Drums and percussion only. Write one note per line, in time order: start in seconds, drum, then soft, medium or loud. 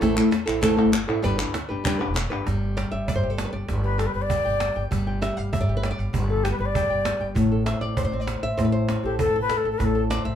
0.02 cajon bass loud
0.17 cajon slap soft
0.17 clap medium
0.32 cajon slap loud
0.48 clap medium
0.63 cajon bass loud
0.63 clap medium
0.93 cajon slap loud
0.93 clap loud
1.09 cajon slap soft
1.24 cajon bass loud
1.24 cajon slap soft
1.39 cajon slap soft
1.39 clap medium
1.54 cajon slap loud
1.85 cajon bass loud
1.85 clap medium
2.01 clap soft
2.16 cajon slap loud
2.16 clap medium
2.31 cajon slap soft
2.31 clap soft
2.47 cajon bass loud
2.47 cajon slap soft
2.62 cajon slap soft
2.77 cajon slap medium
3.08 cajon bass loud
3.38 cajon slap loud
3.53 cajon slap soft
3.68 cajon bass medium
3.68 cajon slap soft
3.84 cajon slap soft
3.99 cajon slap medium
4.30 cajon bass loud
4.60 cajon slap loud
4.76 cajon slap soft
4.92 cajon bass loud
5.22 cajon slap medium
5.53 cajon bass loud
5.83 cajon slap loud
5.99 cajon slap soft
6.14 cajon bass loud
6.30 cajon slap soft
6.45 cajon slap loud
6.75 cajon bass loud
7.05 cajon slap loud
7.36 cajon bass loud
7.66 cajon slap medium
7.97 cajon bass loud
8.27 cajon slap loud
8.43 cajon slap soft
8.59 cajon bass loud
8.59 cajon slap soft
8.89 cajon slap medium
9.19 cajon bass loud
9.50 cajon slap loud
9.80 cajon bass loud
9.80 cajon slap soft
10.11 cajon slap loud